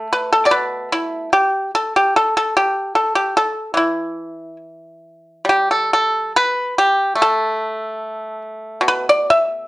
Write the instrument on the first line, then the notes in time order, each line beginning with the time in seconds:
pipa
Already playing: A3
0.12 B4
0.33 A4
0.45 B2 D5
0.51 B4
0.93 E4
1.33 G4
1.75 A4
1.96 G4
2.16 A4
2.37 A4
2.57 G4
2.95 A4
3.15 G4
3.37 A4
3.74 E3 E4
5.45 G3
5.49 G4
5.71 A4
5.93 A4
6.36 B4
6.78 G4
7.16 A3
7.22 A4
8.81 B2
8.88 B4
9.09 D5
9.30 E5